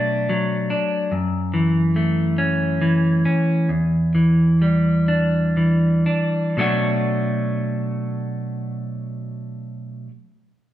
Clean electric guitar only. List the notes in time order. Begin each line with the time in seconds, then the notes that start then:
Already playing: B2 F#3 A3 D4
0.29 F#3
0.70 D4
1.12 F#2
1.54 E3
1.96 A3
2.38 C#4
2.82 E3
3.25 C#4
3.69 E2
4.15 E3
4.62 G3
5.08 D4
5.57 E3
6.06 D4
6.57 B2 F#3 A3 D4 F#4